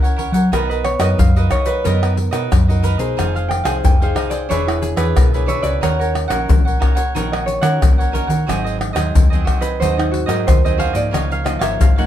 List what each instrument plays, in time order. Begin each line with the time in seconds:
Already playing: fingered electric bass C#2, nylon-string guitar C#3 C#4 E4 A#4
0.02 cavaquinho A#4 C#5 F#5, pandeiro, shaker
0.16 cavaquinho E4 A#4 C#5 F#5, pandeiro
0.32 fingered electric bass F#3, cavaquinho A#4 C#5 F#5, pandeiro, shaker
0.52 fingered electric bass B1, nylon-string guitar B3 D#4 F#4 A#4, cavaquinho D#4 A#4 B4 D#5, harp A#4, pandeiro, tamborim, shaker, surdo
0.69 cavaquinho A#4 B4 D#5, harp B4, pandeiro, shaker
0.84 harp C#5, muted cavaquinho stroke, pandeiro, tamborim
0.99 fingered electric bass F#2, nylon-string guitar D#4 F#4 A#4, cavaquinho A#4 B4 D#5, harp D#5, pandeiro, tamborim, shaker
1.18 fingered electric bass F#2, nylon-string guitar F#3, harp F5, pandeiro, shaker, surdo
1.36 nylon-string guitar D#4 F#4 A#4, cavaquinho A#4 B4 D#5, harp D#5, pandeiro, shaker
1.50 cavaquinho D#4 A#4 B4 D#5, harp C#5, pandeiro, tamborim, shaker, surdo
1.66 cavaquinho A#4 B4 D#5, harp B4, pandeiro, shaker
1.84 fingered electric bass F#2, nylon-string guitar B3 D#4 F#4 A#4, cavaquinho D#4 A#4 B4 D#5, harp A#4, pandeiro, shaker, surdo
2.01 cavaquinho A#4 B4 D#5, pandeiro, tamborim, shaker
2.16 muted cavaquinho stroke, pandeiro
2.31 fingered electric bass B2, nylon-string guitar D#4 F#4 A#4, cavaquinho A#4 B4 D#5, pandeiro, tamborim, shaker
2.51 fingered electric bass F#2, nylon-string guitar F#3, pandeiro, tamborim, shaker, surdo
2.68 nylon-string guitar D#4 F#4 A#4, cavaquinho A#4 B4 D#5, pandeiro, shaker
2.82 cavaquinho D#4 A#4 B4 D#5, pandeiro, shaker
2.98 fingered electric bass B2, nylon-string guitar D#4 G#4 C5, cavaquinho A#4 B4 D#5, pandeiro, shaker
3.17 fingered electric bass F1, nylon-string guitar F3, cavaquinho D#4 G#4 C5 F5, pandeiro, tamborim, shaker, surdo
3.34 cavaquinho G#4 C5 F5, harp F5, pandeiro, shaker
3.49 harp G5, muted cavaquinho stroke, pandeiro, tamborim
3.64 fingered electric bass C2, nylon-string guitar D#4 G#4 C5, cavaquinho G#4 C5 F5, harp G#5, pandeiro, tamborim, shaker
3.84 fingered electric bass F1, nylon-string guitar C3, harp G5, pandeiro, shaker, surdo
4.00 nylon-string guitar D#4 G#4 C5, cavaquinho G#4 C5 F5, harp F5, pandeiro, shaker
4.15 cavaquinho D#4 G#4 C5 F5, harp D#5, pandeiro, tamborim
4.30 cavaquinho G#4 C5 F5, harp D5, pandeiro, shaker
4.49 fingered electric bass E1, nylon-string guitar E3 D4 G#4 C#5, cavaquinho D4 G#4 B4 E5, harp C#5, pandeiro, shaker, surdo
4.67 harp E4, cavaquinho G#4 B4 E5, pandeiro, tamborim, shaker
4.81 harp G#4, muted cavaquinho stroke, pandeiro, shaker
4.96 fingered electric bass E2, nylon-string guitar D4 G#4 C#5, cavaquinho G#4 B4 E5, harp B4, pandeiro, tamborim, shaker
5.16 fingered electric bass B1, nylon-string guitar B2, harp A#4, pandeiro, tamborim, shaker, surdo
5.33 nylon-string guitar D4 G#4 C#5, cavaquinho G#4 B4 E5, harp B4, pandeiro, shaker
5.46 cavaquinho D4 G#4 B4 E5, harp C#5, pandeiro, shaker
5.62 fingered electric bass C#2, nylon-string guitar C#4 F#4 A#4, cavaquinho G#4 B4 E5, harp D5, pandeiro, shaker
5.81 fingered electric bass D#2, nylon-string guitar D#3, cavaquinho D#4 A#4 C#5 F#5, harp C#5, pandeiro, tamborim, shaker, surdo
5.99 harp A#4, cavaquinho A#4 C#5 F#5, pandeiro, shaker
6.13 muted cavaquinho stroke, pandeiro, tamborim
6.28 fingered electric bass A#1, nylon-string guitar C#4 F#4 A#4, cavaquinho A#4 C#5 F#5, pandeiro, tamborim, shaker
6.48 fingered electric bass A#1, nylon-string guitar A#2, pandeiro, shaker, surdo
6.65 cavaquinho A#4 C#5 F#5, pandeiro, shaker
6.79 nylon-string guitar C#4 F#4 A#4, cavaquinho D#4 A#4 C#5 F#5, pandeiro, tamborim, surdo
6.95 cavaquinho A#4 C#5 F#5, pandeiro, shaker
7.15 fingered electric bass A#1, nylon-string guitar D#3 C#4 F#4 A#4, cavaquinho D#4 A#4 C#5 F#5, pandeiro, shaker, surdo
7.32 cavaquinho A#4 C#5 F#5, harp D#5, pandeiro, tamborim, shaker
7.46 harp C#5, muted cavaquinho stroke, pandeiro, shaker
7.61 fingered electric bass D#3, nylon-string guitar C#4 F#4 A#4, cavaquinho A#4 C#5 F#5, harp F#5, pandeiro, tamborim, shaker
7.81 fingered electric bass A#1, nylon-string guitar A#2, pandeiro, tamborim, shaker, surdo
7.98 cavaquinho A#4 C#5 F#5, pandeiro, shaker
8.12 nylon-string guitar C#4 F#4 A#4, cavaquinho D#4 A#4 C#5 F#5, pandeiro, shaker
8.27 fingered electric bass D#3, cavaquinho A#4 C#5 F#5, pandeiro, shaker
8.46 fingered electric bass G#1, nylon-string guitar G#2 F#3 C4 D#4, cavaquinho F#4 G#4 C5 D#5, pandeiro, tamborim, shaker, surdo
8.64 cavaquinho G#4 C5 D#5, pandeiro, shaker
8.77 muted cavaquinho stroke, pandeiro, tamborim
8.93 fingered electric bass D#2, nylon-string guitar F#3 C4, cavaquinho G#4 C5 D#5, pandeiro, tamborim, shaker
8.97 nylon-string guitar D#4
9.15 fingered electric bass D#2, nylon-string guitar D#3, pandeiro, shaker, surdo
9.30 nylon-string guitar F#3 C4 D#4, cavaquinho G#4 C5 D#5, pandeiro, shaker
9.45 cavaquinho F#4 G#4 C5 D#5, pandeiro, tamborim, surdo
9.60 cavaquinho G#4 C5 D#5, harp B4, pandeiro, shaker
9.80 fingered electric bass D#2, nylon-string guitar G#2 F#3 C4 D#4, cavaquinho F#4 G#4 C5 D#5, harp C5, pandeiro, shaker, surdo
9.97 harp D#4, cavaquinho G#4 C5 D#5, pandeiro, tamborim, shaker
10.11 harp F#4, muted cavaquinho stroke, pandeiro
10.26 fingered electric bass G#2, nylon-string guitar F#3 C4 D#4, cavaquinho G#4 C5 D#5, harp A#4, pandeiro, tamborim, shaker
10.47 fingered electric bass D#2, nylon-string guitar D#3, harp C5, pandeiro, tamborim, shaker, surdo
10.64 nylon-string guitar F#3 C4 D#4, cavaquinho G#4 C5 D#5, harp D#5, pandeiro, shaker
10.77 cavaquinho F#4 G#4 C5 D#5, harp F5, pandeiro
10.93 fingered electric bass G#2, nylon-string guitar F3 A#3 D#4, cavaquinho G#4 C5 D#5, harp D5, pandeiro, shaker
11.11 fingered electric bass C#2, nylon-string guitar C#3, cavaquinho F4 A#4 C#5 F5, harp D#5, pandeiro, tamborim, shaker, surdo
11.30 cavaquinho A#4 C#5 F5, harp F5, pandeiro, shaker
11.44 nylon-string guitar F3 A#3 D#4, harp D#5, muted cavaquinho stroke, pandeiro, tamborim, shaker
11.59 fingered electric bass G#1, cavaquinho A#4 C#5 F5, harp E5, pandeiro, tamborim, shaker
11.79 fingered electric bass G#1, nylon-string guitar G#2, harp F5, pandeiro, shaker, surdo
11.96 nylon-string guitar F3 A#3 D#4, cavaquinho A#4 C#5 F5, harp F#5, pandeiro, shaker